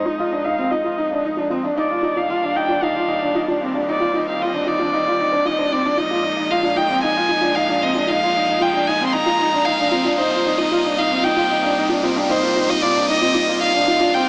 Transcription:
Already playing: F2 F3 G#3 D#4, riser
0.05 D#4 F4 D#5
0.19 F4
0.32 D4 F5
0.44 D#4 F5
0.59 C4
0.70 D#4 F4 D#5
0.84 F4
0.98 D#4 F5
1.11 D4 F5
1.25 D#4
1.37 D4 F4
1.50 C4 F4
1.63 D4 F5
1.77 D#2 D#3 G3 D4 D#4 D5 F5
1.90 F4
2.03 D#4 F4
2.17 D#4 F4 F5
2.29 F4 F5
2.42 D4 F5
2.56 D#4 G5
2.69 D4 F4
2.82 D#4 F4 F5
2.95 F4 F5
3.08 D#4 F5
3.22 D4
3.35 D#4 F4
3.48 D4 F4
3.61 C4 F5
3.74 D4 F5
3.87 C4 D#4 D5
4.00 F4
4.14 D#4 F4
4.27 D#4 F5
4.40 F4 D#5 F5
4.54 D4
4.66 D#4 F4 D5
4.79 D4 F4
4.93 D#4 F5
5.06 F4 F5
5.21 D#4
5.32 D4 C5
5.45 D#4 F4 D#5
5.59 D4 C5
5.71 C4 D#4 D5
5.86 D4
5.97 A#2 F3 G#3 D#4 F4 D#5
6.11 F4
6.24 D#4 F5
6.37 D#4 F5
6.51 F4 F5
6.63 D4 F4
6.76 D#4 F4 G5
6.90 C4 F5
7.03 D#4 F5 G#5
7.16 F4
7.29 D#4 F4
7.41 D4 F4
7.55 D#4 F5
7.68 D4 F5
7.82 C4 D#5
7.95 D4 F4
8.07 D#4 F4 F5
8.21 F4 F5
8.35 D#4 F5
8.49 D#4
8.60 F4 G5
8.74 D4 F4
8.87 D#4 F5 G#5
9.00 C4 F5
9.06 C6
9.12 D#4 A#5
9.26 F4
9.39 D#4 F4
9.52 D4 F5
9.65 D#4 F5
9.80 D4
9.91 C4 F4
10.04 D4 F4
10.17 C3 G3 A#3 D#4 C5 F5
10.31 F4 F5
10.46 D#4
10.58 D#4 F4 D#5
10.71 F4
10.85 D4 F5
10.97 D#4 F5
11.11 C4
11.23 D#4 F4 G5
11.37 F4
11.50 D#4 F5
11.63 D4 F5
11.78 D#4
11.89 D4 F4
12.03 C4 F4
12.16 D4 F5
12.29 D#4 C5 F5
12.43 F4
12.56 D#4 F4
12.69 D#4 F4 D#5
12.82 F4 D5 F5
12.95 D4 F5
13.09 D#4 D#5
13.22 C4 F4
13.34 D#4 F4, swell
13.48 F4 F5
13.60 D#4 F5
13.75 D4
13.88 D#4 F4
14.00 D4 F4
14.14 C4 F5 G5

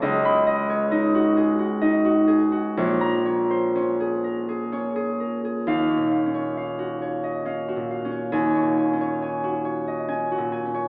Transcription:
Already playing: C#5
0.02 C#2 D#5
0.25 B5
0.47 D#5
0.70 C#5
0.91 D#4 D#5
1.15 F#4
1.37 G#4
1.59 F#4
1.81 D#4 D#5
2.05 F#4
2.27 G#4
2.52 F#4
2.77 A#1 C#5
3.01 A#5
3.26 C#5
3.50 C5
3.75 C#4 C#5
4.00 G#4
4.24 A#4
4.49 G#4
4.72 C#4 C#5
4.96 G#4
5.20 A#4
5.45 G#4
5.67 D#2 F5
5.90 C#5
5.97 A#2
6.11 F5
6.26 C#4
6.34 C#5
6.57 F5
6.79 F#4
7.02 C#5
7.24 D#5
7.45 C#4 F5
7.68 F#4
7.76 A#2
7.91 F5
8.05 C#4
8.11 C#5
8.32 D#2 G#5
8.55 C#5
8.62 A#2
8.78 G#5
8.93 C#4
9.01 C#5
9.22 G#5
9.44 F#4
9.65 C#5
9.88 D#5
10.08 C#4 G#5
10.32 F#4
10.38 A#2
10.52 G#5
10.66 C#4
10.74 C#5

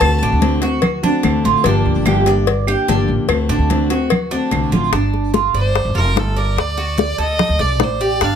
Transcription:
Already playing: A5
0.01 D2 D3 A3 C4 F#4, cowbell, high conga, claves
0.22 A1 D4, high conga
0.32 D2
0.41 D3 A3 C4 F#4, cowbell, high conga
0.62 A3 C4 F#4, cowbell, high conga
0.82 muted steel-string acoustic guitar stroke, cowbell, high conga, low conga, claves
1.03 A3 C4 D4 F#4, high conga, low conga
1.23 D2 D3 A3 C4 F#4, cowbell, high conga, claves
1.44 A1 F4, high conga
1.64 G1 D3 F3 A#3 D4 G4, cowbell, high conga
1.85 D2, high conga
1.96 G1
2.05 D3 F3 A#3 D4 G4, cowbell, high conga, claves
2.26 A#3 D4 G4 D5, cowbell, high conga
2.47 muted steel-string acoustic guitar stroke, cowbell, high conga
2.67 A#3 D4 G4, high conga, claves
2.88 G1 D3 F3 A#3 D4 G4, cowbell, high conga
3.08 A1, high conga
3.28 D2 D3 A3 C4 F#4, cowbell, high conga, claves
3.49 A1 D4, high conga
3.59 D2
3.70 D3 A3 C4 F#4, cowbell, high conga
3.90 A3 C4 F#4, cowbell, high conga
4.10 muted steel-string acoustic guitar stroke, cowbell, high conga, low conga, claves
4.31 A3 C4 D4 F#4, high conga
4.51 C2 D3 A3 C4 F#4, cowbell, high conga, claves
4.71 A1 F4, low conga
4.92 G1 D4, high bongo, high conga
5.14 high bongo, high conga
5.34 F4, high bongo, high conga
5.54 G1 C5 D5, high bongo, high conga
5.75 high bongo, high conga
5.85 G1
5.95 F1 F4 A#4, high conga
6.16 G1 A4, high bongo, low bongo, high conga
6.37 A#4 D5, high bongo, high conga
6.57 D2 D5, high bongo, high conga
6.77 F#4, high bongo, high conga
6.98 D5, high bongo, high conga
7.18 D2 A4 D#5, high conga
7.39 high bongo, high conga, low conga
7.49 D2
7.59 C2 D5, high bongo, high conga
7.80 A1 C5, high bongo, low bongo, high conga
8.01 G4 D5, high bongo
8.21 G1 D4 F5, high bongo, high conga

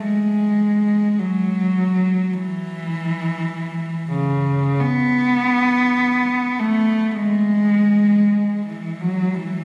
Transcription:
0.03 G#3
1.19 F#3
2.34 E3
4.12 C#3
4.80 B3
6.59 A3
7.15 G#3
8.67 E3
9.01 F#3
9.35 E3

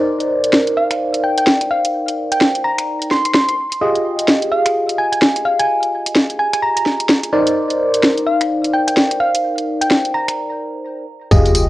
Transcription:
Already playing: D#4 A#4 C5 D5
0.20 closed hi-hat
0.44 closed hi-hat
0.53 snare
0.67 closed hi-hat
0.77 F5
0.91 finger snap, closed hi-hat
1.14 closed hi-hat
1.24 G5
1.38 G5, closed hi-hat
1.47 snare
1.61 finger snap, closed hi-hat
1.71 F5
1.85 closed hi-hat
2.08 closed hi-hat
2.32 G5, closed hi-hat
2.41 snare
2.55 closed hi-hat
2.64 A#5
2.78 finger snap, closed hi-hat
3.02 closed hi-hat
3.11 C6, snare
3.25 C6, closed hi-hat
3.34 C6, snare
3.49 C6, finger snap, closed hi-hat
3.72 closed hi-hat
3.81 F4 G4 G#4 D#5
3.95 closed hi-hat
4.19 closed hi-hat
4.28 snare
4.42 closed hi-hat
4.52 F5
4.66 finger snap, closed hi-hat
4.89 closed hi-hat
4.98 G#5
5.12 G#5, closed hi-hat
5.22 snare
5.36 finger snap, closed hi-hat
5.45 F5
5.60 G#5, closed hi-hat
5.83 closed hi-hat
6.06 closed hi-hat
6.16 snare
6.30 closed hi-hat
6.39 G#5
6.53 G#5, finger snap, closed hi-hat
6.62 A#5
6.77 A#5, closed hi-hat
6.86 snare
7.00 closed hi-hat
7.09 snare
7.24 finger snap, closed hi-hat
7.33 D#4 A#4 C5 D5
7.47 closed hi-hat
7.70 closed hi-hat
7.94 closed hi-hat
8.03 snare
8.18 closed hi-hat
8.27 F5
8.41 finger snap, closed hi-hat
8.64 closed hi-hat
8.74 G5
8.88 G5, closed hi-hat
8.97 snare
9.11 finger snap, closed hi-hat
9.20 F5
9.35 closed hi-hat
9.58 closed hi-hat
9.81 G5, closed hi-hat
9.91 snare
10.05 closed hi-hat
10.14 A#5
10.28 finger snap, closed hi-hat
11.31 F1 F4 G4 G#4 D#5, kick, tambourine, sub drop
11.46 closed hi-hat, tambourine
11.55 closed hi-hat, tambourine

